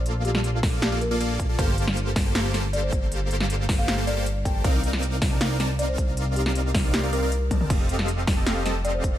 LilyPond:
<<
  \new Staff \with { instrumentName = "Marimba" } { \time 4/4 \key g \minor \tempo 4 = 157 r8 g'16 r4 r16 g'16 r16 bes'16 bes'16 r4 | r2. d''16 c''16 r8 | r4. r16 f''16 r8 d''16 r8. g''16 g''16 | r2. d''16 c''16 r8 |
r8 g'16 r4 r16 g'16 r16 bes'16 bes'16 r4 | r2. d''16 c''16 r8 | }
  \new Staff \with { instrumentName = "Supersaw synth" } { \time 4/4 \key g \minor <bes f' a' d'' f''>8 <bes f' a' d'' f''>4~ <bes f' a' d'' f''>16 <bes f' a' d'' f''>8 <bes f' a' d'' f''>16 r16 <bes f' a' d'' f''>16 <bes f' a' d'' f''>8. <bes f' a' d'' a''>16 | <bes g' a' c'' f''>8 <bes g' a' c'' f''>4~ <bes g' a' c'' f''>16 <bes g' a' c'' a''>16 <bes g' a' c'' f''>8 <bes g' a' c'' a''>16 r16 <bes g' a' c'' f''>4~ | <bes g' a' c'' f''>8 <bes g' a' c'' f''>4~ <bes g' a' c'' f''>16 <bes g' a' c'' f''>8 <bes g' a' c'' f''>16 <bes g' a' c'' f''>16 <bes g' a' c'' f''>16 r8 <bes g' a' c'' a''>8 | <c' ees' bes' d'' f''>8 <c' ees' bes' d'' f''>4~ <c' ees' bes' d'' f''>16 <c' ees' bes' d'' a''>16 <c' ees' bes' d'' f''>8 <c' ees' bes' d'' a''>16 r16 <c' ees' bes' d'' f''>4~ |
<c' ees' bes' d'' f''>8 <c' ees' bes' d'' f''>4~ <c' ees' bes' d'' f''>16 <c' ees' bes' d'' f''>8 <c' ees' bes' d'' f''>16 <c' ees' bes' d'' f''>16 <c' ees' bes' d'' f''>16 r8 <c' ees' bes' d'' a''>8 | <c' g' a' ees'' f''>8 <c' g' a' ees'' f''>4~ <c' g' a' ees'' f''>16 <c' g' a' ees'' a''>16 <c' g' a' ees'' f''>8 <c' g' a' ees'' a''>16 r16 <c' g' a' ees'' f''>4 | }
  \new Staff \with { instrumentName = "Analog synth bass" } { \clef bass \time 4/4 \key g \minor bes,,1 | g,,1~ | g,,1 | c,1~ |
c,1 | f,,1 | }
  \new DrumStaff \with { instrumentName = "Drums" } \drummode { \time 4/4 hh8 hh16 sn16 hh8 <hho bd sn>8 <hh sn>8 hh8 hh8 <hh bd>8 | <hh bd>8 hh16 sn16 hh8 <hho bd sn>8 <hh sn>8 <hh sn>8 hh8 <hh bd>8 | hh8 hh16 sn16 hh8 <hho bd sn>8 <hh sn>8 hh8 hh8 <hh bd>8 | <hh bd>8 hh16 sn16 hh8 <hho bd sn>8 <hh sn>8 <hh sn>8 hh8 <hh bd>8 |
hh8 hh16 sn16 hh8 <hho bd sn>8 <hh sn>8 hh8 hh8 <hh bd tommh>16 toml16 | <cymc hh bd>8 hh16 sn16 hh8 <hho bd sn>8 <hh sn>8 <hh sn>8 hh8 <hh bd>8 | }
>>